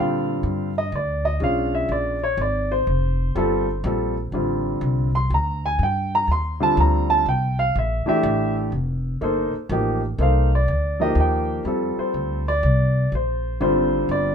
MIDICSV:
0, 0, Header, 1, 4, 480
1, 0, Start_track
1, 0, Tempo, 488202
1, 1381, Time_signature, 3, 2, 24, 8
1, 14108, End_track
2, 0, Start_track
2, 0, Title_t, "Upright piano"
2, 0, Program_c, 0, 0
2, 0, Note_on_c, 0, 50, 54
2, 0, Note_on_c, 0, 55, 48
2, 0, Note_on_c, 0, 60, 48
2, 0, Note_on_c, 0, 65, 62
2, 0, Note_on_c, 0, 77, 64
2, 677, Note_off_c, 0, 50, 0
2, 680, Note_off_c, 0, 55, 0
2, 685, Note_off_c, 0, 60, 0
2, 687, Note_off_c, 0, 65, 0
2, 714, Note_off_c, 0, 77, 0
2, 767, Note_on_c, 0, 75, 85
2, 912, Note_off_c, 0, 75, 0
2, 939, Note_on_c, 0, 74, 66
2, 1226, Note_off_c, 0, 74, 0
2, 1230, Note_on_c, 0, 75, 82
2, 1379, Note_on_c, 0, 56, 49
2, 1383, Note_off_c, 0, 75, 0
2, 1388, Note_on_c, 0, 61, 44
2, 1394, Note_on_c, 0, 62, 45
2, 1402, Note_on_c, 0, 65, 55
2, 1412, Note_on_c, 0, 77, 77
2, 1702, Note_off_c, 0, 77, 0
2, 1717, Note_on_c, 0, 76, 67
2, 1866, Note_off_c, 0, 76, 0
2, 1885, Note_on_c, 0, 74, 71
2, 2111, Note_off_c, 0, 56, 0
2, 2115, Note_off_c, 0, 61, 0
2, 2119, Note_off_c, 0, 62, 0
2, 2122, Note_off_c, 0, 65, 0
2, 2178, Note_off_c, 0, 74, 0
2, 2198, Note_on_c, 0, 73, 78
2, 2346, Note_off_c, 0, 73, 0
2, 2374, Note_on_c, 0, 74, 75
2, 2663, Note_off_c, 0, 74, 0
2, 2670, Note_on_c, 0, 72, 76
2, 3297, Note_on_c, 0, 55, 60
2, 3303, Note_on_c, 0, 60, 55
2, 3310, Note_on_c, 0, 65, 62
2, 3316, Note_on_c, 0, 69, 74
2, 3581, Note_off_c, 0, 55, 0
2, 3584, Note_off_c, 0, 60, 0
2, 3587, Note_off_c, 0, 65, 0
2, 3590, Note_off_c, 0, 69, 0
2, 3745, Note_off_c, 0, 72, 0
2, 3780, Note_on_c, 0, 55, 53
2, 3784, Note_on_c, 0, 60, 46
2, 3792, Note_on_c, 0, 65, 46
2, 3799, Note_on_c, 0, 69, 53
2, 4062, Note_off_c, 0, 55, 0
2, 4064, Note_off_c, 0, 60, 0
2, 4068, Note_off_c, 0, 65, 0
2, 4072, Note_off_c, 0, 69, 0
2, 4261, Note_on_c, 0, 50, 47
2, 4267, Note_on_c, 0, 55, 44
2, 4271, Note_on_c, 0, 60, 45
2, 4276, Note_on_c, 0, 65, 56
2, 4990, Note_off_c, 0, 50, 0
2, 4993, Note_off_c, 0, 55, 0
2, 4995, Note_off_c, 0, 60, 0
2, 4998, Note_off_c, 0, 65, 0
2, 5066, Note_on_c, 0, 84, 78
2, 5218, Note_off_c, 0, 84, 0
2, 5252, Note_on_c, 0, 82, 69
2, 5541, Note_off_c, 0, 82, 0
2, 5561, Note_on_c, 0, 80, 81
2, 5706, Note_off_c, 0, 80, 0
2, 5734, Note_on_c, 0, 79, 73
2, 6021, Note_off_c, 0, 79, 0
2, 6046, Note_on_c, 0, 82, 87
2, 6188, Note_off_c, 0, 82, 0
2, 6210, Note_on_c, 0, 84, 78
2, 6492, Note_on_c, 0, 50, 58
2, 6493, Note_on_c, 0, 55, 52
2, 6499, Note_off_c, 0, 84, 0
2, 6504, Note_on_c, 0, 60, 50
2, 6504, Note_on_c, 0, 65, 70
2, 6517, Note_on_c, 0, 81, 88
2, 6664, Note_off_c, 0, 81, 0
2, 6689, Note_on_c, 0, 82, 72
2, 6979, Note_off_c, 0, 82, 0
2, 6981, Note_on_c, 0, 81, 85
2, 7103, Note_off_c, 0, 50, 0
2, 7103, Note_off_c, 0, 55, 0
2, 7109, Note_off_c, 0, 60, 0
2, 7109, Note_off_c, 0, 65, 0
2, 7135, Note_off_c, 0, 81, 0
2, 7164, Note_on_c, 0, 79, 73
2, 7456, Note_off_c, 0, 79, 0
2, 7464, Note_on_c, 0, 77, 81
2, 7617, Note_off_c, 0, 77, 0
2, 7655, Note_on_c, 0, 76, 62
2, 7923, Note_on_c, 0, 52, 63
2, 7927, Note_on_c, 0, 57, 56
2, 7936, Note_off_c, 0, 76, 0
2, 7936, Note_on_c, 0, 62, 52
2, 7943, Note_on_c, 0, 67, 71
2, 7951, Note_on_c, 0, 76, 79
2, 8389, Note_off_c, 0, 76, 0
2, 8539, Note_off_c, 0, 52, 0
2, 8541, Note_off_c, 0, 57, 0
2, 8546, Note_off_c, 0, 62, 0
2, 8549, Note_off_c, 0, 67, 0
2, 9056, Note_on_c, 0, 58, 54
2, 9064, Note_on_c, 0, 63, 54
2, 9071, Note_on_c, 0, 69, 53
2, 9082, Note_on_c, 0, 72, 64
2, 9341, Note_off_c, 0, 58, 0
2, 9345, Note_off_c, 0, 63, 0
2, 9348, Note_off_c, 0, 69, 0
2, 9354, Note_off_c, 0, 72, 0
2, 9541, Note_on_c, 0, 53, 55
2, 9548, Note_on_c, 0, 58, 52
2, 9557, Note_on_c, 0, 63, 51
2, 9559, Note_on_c, 0, 67, 66
2, 9824, Note_off_c, 0, 53, 0
2, 9827, Note_off_c, 0, 58, 0
2, 9832, Note_off_c, 0, 63, 0
2, 9833, Note_off_c, 0, 67, 0
2, 10017, Note_on_c, 0, 58, 51
2, 10029, Note_on_c, 0, 63, 47
2, 10030, Note_on_c, 0, 69, 46
2, 10034, Note_on_c, 0, 72, 57
2, 10051, Note_on_c, 0, 77, 66
2, 10302, Note_off_c, 0, 58, 0
2, 10308, Note_off_c, 0, 63, 0
2, 10309, Note_off_c, 0, 69, 0
2, 10311, Note_off_c, 0, 72, 0
2, 10342, Note_off_c, 0, 77, 0
2, 10374, Note_on_c, 0, 74, 69
2, 10803, Note_off_c, 0, 74, 0
2, 10813, Note_on_c, 0, 53, 59
2, 10824, Note_on_c, 0, 58, 56
2, 10827, Note_on_c, 0, 63, 57
2, 10829, Note_on_c, 0, 75, 84
2, 10835, Note_on_c, 0, 67, 64
2, 10982, Note_off_c, 0, 75, 0
2, 11012, Note_on_c, 0, 79, 65
2, 11368, Note_off_c, 0, 79, 0
2, 11427, Note_off_c, 0, 53, 0
2, 11432, Note_off_c, 0, 58, 0
2, 11434, Note_off_c, 0, 63, 0
2, 11438, Note_off_c, 0, 67, 0
2, 11455, Note_on_c, 0, 55, 49
2, 11466, Note_on_c, 0, 60, 45
2, 11470, Note_on_c, 0, 65, 42
2, 11479, Note_on_c, 0, 69, 56
2, 11789, Note_on_c, 0, 72, 64
2, 12192, Note_off_c, 0, 55, 0
2, 12198, Note_off_c, 0, 60, 0
2, 12200, Note_off_c, 0, 65, 0
2, 12204, Note_off_c, 0, 69, 0
2, 12231, Note_off_c, 0, 72, 0
2, 12273, Note_on_c, 0, 74, 82
2, 12872, Note_off_c, 0, 74, 0
2, 12930, Note_on_c, 0, 72, 64
2, 13374, Note_off_c, 0, 72, 0
2, 13376, Note_on_c, 0, 50, 54
2, 13378, Note_on_c, 0, 55, 53
2, 13388, Note_on_c, 0, 60, 50
2, 13389, Note_on_c, 0, 72, 73
2, 13392, Note_on_c, 0, 65, 67
2, 13835, Note_off_c, 0, 72, 0
2, 13877, Note_on_c, 0, 74, 77
2, 14108, Note_off_c, 0, 50, 0
2, 14108, Note_off_c, 0, 55, 0
2, 14108, Note_off_c, 0, 60, 0
2, 14108, Note_off_c, 0, 65, 0
2, 14108, Note_off_c, 0, 74, 0
2, 14108, End_track
3, 0, Start_track
3, 0, Title_t, "Upright bass"
3, 0, Program_c, 1, 32
3, 0, Note_on_c, 1, 46, 75
3, 406, Note_off_c, 1, 46, 0
3, 424, Note_on_c, 1, 43, 76
3, 888, Note_off_c, 1, 43, 0
3, 906, Note_on_c, 1, 38, 81
3, 1369, Note_off_c, 1, 38, 0
3, 1377, Note_on_c, 1, 35, 75
3, 1843, Note_off_c, 1, 35, 0
3, 1855, Note_on_c, 1, 34, 80
3, 2322, Note_off_c, 1, 34, 0
3, 2334, Note_on_c, 1, 32, 83
3, 2801, Note_off_c, 1, 32, 0
3, 2822, Note_on_c, 1, 29, 80
3, 3285, Note_off_c, 1, 29, 0
3, 3299, Note_on_c, 1, 31, 81
3, 3763, Note_off_c, 1, 31, 0
3, 3774, Note_on_c, 1, 34, 87
3, 4240, Note_off_c, 1, 34, 0
3, 4249, Note_on_c, 1, 33, 74
3, 4717, Note_off_c, 1, 33, 0
3, 4730, Note_on_c, 1, 36, 79
3, 5198, Note_off_c, 1, 36, 0
3, 5214, Note_on_c, 1, 38, 80
3, 5680, Note_off_c, 1, 38, 0
3, 5690, Note_on_c, 1, 43, 77
3, 6158, Note_off_c, 1, 43, 0
3, 6170, Note_on_c, 1, 39, 69
3, 6638, Note_off_c, 1, 39, 0
3, 6657, Note_on_c, 1, 38, 83
3, 7122, Note_off_c, 1, 38, 0
3, 7135, Note_on_c, 1, 36, 69
3, 7601, Note_off_c, 1, 36, 0
3, 7625, Note_on_c, 1, 34, 80
3, 7914, Note_off_c, 1, 34, 0
3, 8095, Note_on_c, 1, 33, 92
3, 8562, Note_off_c, 1, 33, 0
3, 8574, Note_on_c, 1, 29, 74
3, 9041, Note_off_c, 1, 29, 0
3, 9061, Note_on_c, 1, 31, 73
3, 9353, Note_off_c, 1, 31, 0
3, 9531, Note_on_c, 1, 33, 91
3, 10001, Note_off_c, 1, 33, 0
3, 10013, Note_on_c, 1, 36, 79
3, 10482, Note_off_c, 1, 36, 0
3, 10502, Note_on_c, 1, 38, 77
3, 10959, Note_off_c, 1, 38, 0
3, 10965, Note_on_c, 1, 39, 81
3, 11439, Note_off_c, 1, 39, 0
3, 11453, Note_on_c, 1, 41, 70
3, 11751, Note_off_c, 1, 41, 0
3, 11938, Note_on_c, 1, 38, 70
3, 12406, Note_off_c, 1, 38, 0
3, 12418, Note_on_c, 1, 36, 84
3, 12887, Note_off_c, 1, 36, 0
3, 12899, Note_on_c, 1, 34, 72
3, 13368, Note_off_c, 1, 34, 0
3, 13378, Note_on_c, 1, 32, 74
3, 13848, Note_off_c, 1, 32, 0
3, 13852, Note_on_c, 1, 31, 76
3, 14108, Note_off_c, 1, 31, 0
3, 14108, End_track
4, 0, Start_track
4, 0, Title_t, "Muted upright bass strokes"
4, 7934, Note_on_c, 9, 29, 39
4, 8032, Note_off_c, 9, 29, 0
4, 9375, Note_on_c, 9, 29, 38
4, 9474, Note_off_c, 9, 29, 0
4, 11770, Note_on_c, 9, 29, 31
4, 11869, Note_off_c, 9, 29, 0
4, 14108, End_track
0, 0, End_of_file